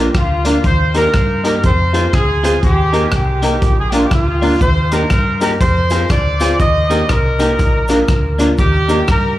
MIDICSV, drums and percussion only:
0, 0, Header, 1, 2, 480
1, 0, Start_track
1, 0, Key_signature, -3, "major"
1, 0, Tempo, 496278
1, 625, Time_signature, 4, 2, 24, 8
1, 9078, End_track
2, 0, Start_track
2, 0, Title_t, "Drums"
2, 139, Note_on_c, 9, 42, 62
2, 141, Note_on_c, 9, 36, 113
2, 141, Note_on_c, 9, 37, 112
2, 236, Note_off_c, 9, 42, 0
2, 237, Note_off_c, 9, 36, 0
2, 238, Note_off_c, 9, 37, 0
2, 434, Note_on_c, 9, 42, 99
2, 531, Note_off_c, 9, 42, 0
2, 618, Note_on_c, 9, 42, 62
2, 621, Note_on_c, 9, 36, 106
2, 715, Note_off_c, 9, 42, 0
2, 717, Note_off_c, 9, 36, 0
2, 914, Note_on_c, 9, 42, 68
2, 1011, Note_off_c, 9, 42, 0
2, 1100, Note_on_c, 9, 37, 106
2, 1100, Note_on_c, 9, 42, 72
2, 1105, Note_on_c, 9, 36, 105
2, 1197, Note_off_c, 9, 37, 0
2, 1197, Note_off_c, 9, 42, 0
2, 1202, Note_off_c, 9, 36, 0
2, 1400, Note_on_c, 9, 42, 78
2, 1496, Note_off_c, 9, 42, 0
2, 1582, Note_on_c, 9, 42, 68
2, 1586, Note_on_c, 9, 36, 105
2, 1678, Note_off_c, 9, 42, 0
2, 1682, Note_off_c, 9, 36, 0
2, 1879, Note_on_c, 9, 42, 85
2, 1975, Note_off_c, 9, 42, 0
2, 2063, Note_on_c, 9, 36, 113
2, 2065, Note_on_c, 9, 42, 71
2, 2067, Note_on_c, 9, 37, 117
2, 2160, Note_off_c, 9, 36, 0
2, 2161, Note_off_c, 9, 42, 0
2, 2163, Note_off_c, 9, 37, 0
2, 2362, Note_on_c, 9, 42, 101
2, 2459, Note_off_c, 9, 42, 0
2, 2542, Note_on_c, 9, 42, 60
2, 2543, Note_on_c, 9, 36, 96
2, 2639, Note_off_c, 9, 42, 0
2, 2640, Note_off_c, 9, 36, 0
2, 2838, Note_on_c, 9, 42, 66
2, 2935, Note_off_c, 9, 42, 0
2, 3014, Note_on_c, 9, 37, 105
2, 3014, Note_on_c, 9, 42, 63
2, 3022, Note_on_c, 9, 36, 111
2, 3111, Note_off_c, 9, 37, 0
2, 3111, Note_off_c, 9, 42, 0
2, 3119, Note_off_c, 9, 36, 0
2, 3312, Note_on_c, 9, 42, 80
2, 3409, Note_off_c, 9, 42, 0
2, 3501, Note_on_c, 9, 42, 67
2, 3502, Note_on_c, 9, 36, 107
2, 3598, Note_off_c, 9, 36, 0
2, 3598, Note_off_c, 9, 42, 0
2, 3792, Note_on_c, 9, 42, 87
2, 3888, Note_off_c, 9, 42, 0
2, 3976, Note_on_c, 9, 42, 73
2, 3977, Note_on_c, 9, 36, 119
2, 3978, Note_on_c, 9, 37, 112
2, 4073, Note_off_c, 9, 36, 0
2, 4073, Note_off_c, 9, 42, 0
2, 4075, Note_off_c, 9, 37, 0
2, 4278, Note_on_c, 9, 46, 53
2, 4375, Note_off_c, 9, 46, 0
2, 4459, Note_on_c, 9, 36, 107
2, 4459, Note_on_c, 9, 42, 53
2, 4462, Note_on_c, 9, 69, 53
2, 4555, Note_off_c, 9, 42, 0
2, 4556, Note_off_c, 9, 36, 0
2, 4558, Note_off_c, 9, 69, 0
2, 4755, Note_on_c, 9, 42, 73
2, 4757, Note_on_c, 9, 69, 72
2, 4852, Note_off_c, 9, 42, 0
2, 4854, Note_off_c, 9, 69, 0
2, 4933, Note_on_c, 9, 37, 101
2, 4933, Note_on_c, 9, 42, 69
2, 4937, Note_on_c, 9, 69, 58
2, 4940, Note_on_c, 9, 36, 102
2, 5030, Note_off_c, 9, 37, 0
2, 5030, Note_off_c, 9, 42, 0
2, 5034, Note_off_c, 9, 69, 0
2, 5036, Note_off_c, 9, 36, 0
2, 5232, Note_on_c, 9, 69, 71
2, 5235, Note_on_c, 9, 42, 76
2, 5329, Note_off_c, 9, 69, 0
2, 5331, Note_off_c, 9, 42, 0
2, 5422, Note_on_c, 9, 36, 114
2, 5422, Note_on_c, 9, 42, 68
2, 5425, Note_on_c, 9, 69, 58
2, 5518, Note_off_c, 9, 42, 0
2, 5519, Note_off_c, 9, 36, 0
2, 5522, Note_off_c, 9, 69, 0
2, 5704, Note_on_c, 9, 69, 73
2, 5712, Note_on_c, 9, 42, 86
2, 5801, Note_off_c, 9, 69, 0
2, 5809, Note_off_c, 9, 42, 0
2, 5894, Note_on_c, 9, 69, 49
2, 5898, Note_on_c, 9, 36, 117
2, 5898, Note_on_c, 9, 42, 70
2, 5900, Note_on_c, 9, 37, 121
2, 5990, Note_off_c, 9, 69, 0
2, 5995, Note_off_c, 9, 36, 0
2, 5995, Note_off_c, 9, 42, 0
2, 5997, Note_off_c, 9, 37, 0
2, 6192, Note_on_c, 9, 69, 78
2, 6198, Note_on_c, 9, 42, 98
2, 6289, Note_off_c, 9, 69, 0
2, 6295, Note_off_c, 9, 42, 0
2, 6380, Note_on_c, 9, 42, 58
2, 6381, Note_on_c, 9, 36, 111
2, 6381, Note_on_c, 9, 69, 52
2, 6477, Note_off_c, 9, 36, 0
2, 6477, Note_off_c, 9, 42, 0
2, 6478, Note_off_c, 9, 69, 0
2, 6678, Note_on_c, 9, 42, 67
2, 6681, Note_on_c, 9, 69, 78
2, 6775, Note_off_c, 9, 42, 0
2, 6778, Note_off_c, 9, 69, 0
2, 6859, Note_on_c, 9, 37, 104
2, 6859, Note_on_c, 9, 69, 57
2, 6860, Note_on_c, 9, 42, 62
2, 6862, Note_on_c, 9, 36, 112
2, 6956, Note_off_c, 9, 37, 0
2, 6956, Note_off_c, 9, 42, 0
2, 6956, Note_off_c, 9, 69, 0
2, 6959, Note_off_c, 9, 36, 0
2, 7151, Note_on_c, 9, 69, 68
2, 7155, Note_on_c, 9, 42, 81
2, 7248, Note_off_c, 9, 69, 0
2, 7252, Note_off_c, 9, 42, 0
2, 7340, Note_on_c, 9, 69, 52
2, 7344, Note_on_c, 9, 36, 108
2, 7345, Note_on_c, 9, 42, 70
2, 7436, Note_off_c, 9, 69, 0
2, 7441, Note_off_c, 9, 36, 0
2, 7442, Note_off_c, 9, 42, 0
2, 7622, Note_on_c, 9, 69, 73
2, 7636, Note_on_c, 9, 42, 90
2, 7719, Note_off_c, 9, 69, 0
2, 7732, Note_off_c, 9, 42, 0
2, 7816, Note_on_c, 9, 69, 47
2, 7817, Note_on_c, 9, 42, 67
2, 7820, Note_on_c, 9, 36, 124
2, 7820, Note_on_c, 9, 37, 116
2, 7912, Note_off_c, 9, 69, 0
2, 7914, Note_off_c, 9, 42, 0
2, 7916, Note_off_c, 9, 37, 0
2, 7917, Note_off_c, 9, 36, 0
2, 8116, Note_on_c, 9, 69, 72
2, 8122, Note_on_c, 9, 42, 99
2, 8213, Note_off_c, 9, 69, 0
2, 8218, Note_off_c, 9, 42, 0
2, 8297, Note_on_c, 9, 69, 51
2, 8304, Note_on_c, 9, 36, 106
2, 8305, Note_on_c, 9, 42, 57
2, 8393, Note_off_c, 9, 69, 0
2, 8401, Note_off_c, 9, 36, 0
2, 8401, Note_off_c, 9, 42, 0
2, 8598, Note_on_c, 9, 69, 76
2, 8601, Note_on_c, 9, 42, 69
2, 8694, Note_off_c, 9, 69, 0
2, 8698, Note_off_c, 9, 42, 0
2, 8778, Note_on_c, 9, 69, 61
2, 8782, Note_on_c, 9, 37, 112
2, 8783, Note_on_c, 9, 42, 65
2, 8787, Note_on_c, 9, 36, 108
2, 8875, Note_off_c, 9, 69, 0
2, 8879, Note_off_c, 9, 37, 0
2, 8879, Note_off_c, 9, 42, 0
2, 8883, Note_off_c, 9, 36, 0
2, 9078, End_track
0, 0, End_of_file